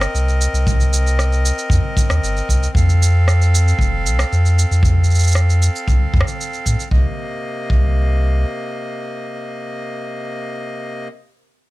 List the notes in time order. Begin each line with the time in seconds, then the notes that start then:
Already playing: C4 A#4 D#5
0.01 cross-stick, shaker
0.15 C2, shaker
0.28 shaker
0.41 shaker
0.54 C2, shaker
0.67 kick, shaker
0.80 shaker
0.93 shaker
1.07 shaker
1.19 cross-stick, shaker
1.32 shaker
1.46 shaker
1.58 shaker
1.70 F2, kick, shaker
1.97 kick, shaker
2.10 D#2, cross-stick, shaker
2.23 G1, shaker
2.37 shaker
2.49 C2, kick, shaker
2.63 shaker
2.75 F2 A4 F5, kick, shaker
2.89 shaker
3.03 shaker
3.28 cross-stick, shaker
3.42 shaker
3.55 shaker
3.68 shaker
3.79 F1, kick, shaker
4.06 C2, shaker
4.19 cross-stick, shaker
4.32 F2, shaker
4.46 shaker
4.59 shaker
4.71 F2, shaker
4.83 kick, shaker
5.04 shaker
5.10 shaker
5.15 shaker
5.19 shaker
5.23 shaker
5.27 shaker
5.31 cross-stick, shaker
5.36 shaker
5.50 shaker
5.62 shaker
5.76 shaker
5.88 C2, kick, shaker
6.14 F2, kick
6.21 cross-stick
6.27 shaker
6.41 shaker
6.53 shaker
6.66 A2, kick, shaker
6.80 shaker
6.91 C2 C3 A#3 D#5, kick
7.70 C2, kick